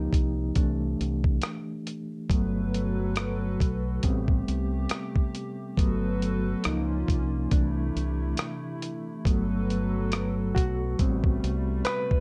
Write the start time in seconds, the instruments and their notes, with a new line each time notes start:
Already playing: reed electric piano F3 A#3 D#4 G4
0.13 fingered electric bass C2, kick, closed hi-hat
0.55 fingered electric bass C2, reed electric piano E3 A3 D4, kick, closed hi-hat
1.01 fingered electric bass C2, closed hi-hat
1.24 kick
1.42 cross-stick, closed hi-hat
1.87 closed hi-hat
2.30 fingered electric bass G1, reed electric piano F#3 A3 B3, analog synth pad F#3 F#4 A4 B4, kick, closed hi-hat
2.74 closed hi-hat
3.16 cross-stick, closed hi-hat
3.60 fingered electric bass B1, kick, closed hi-hat
4.03 fingered electric bass A1, analog synth pad C3 A3 G4, reed electric piano G3 B3 C4, kick, closed hi-hat
4.28 kick
4.48 fingered electric bass C2, closed hi-hat
4.89 cross-stick, closed hi-hat
5.16 kick
5.35 closed hi-hat
5.77 fingered electric bass G1, analog synth pad F#3 F#4 A4 B4, reed electric piano F#3 A3 B3, kick, closed hi-hat
6.22 closed hi-hat
6.64 fingered electric bass C#2, reed electric piano F3 A#3 D#4, analog synth pad A#3 C#4 F4, cross-stick, closed hi-hat
7.08 fingered electric bass C2, kick, closed hi-hat
7.51 fingered electric bass C2, analog synth pad C3 A3 E4, reed electric piano E3 A3 D4, kick, closed hi-hat
7.96 fingered electric bass C2, closed hi-hat
8.37 cross-stick, closed hi-hat
8.82 closed hi-hat
9.25 fingered electric bass G1, reed electric piano F#3 A3 B3, analog synth pad F#3 F#4 A4 B4, kick, closed hi-hat
9.70 closed hi-hat
10.12 cross-stick, closed hi-hat
10.55 fingered electric bass B1, reed electric piano F#4, kick, closed hi-hat
10.99 fingered electric bass A1, analog synth pad C3 G3 A3, reed electric piano G3 B3 C4, kick, closed hi-hat
11.24 kick
11.44 fingered electric bass C2, closed hi-hat
11.85 reed electric piano B4, cross-stick, closed hi-hat
12.11 kick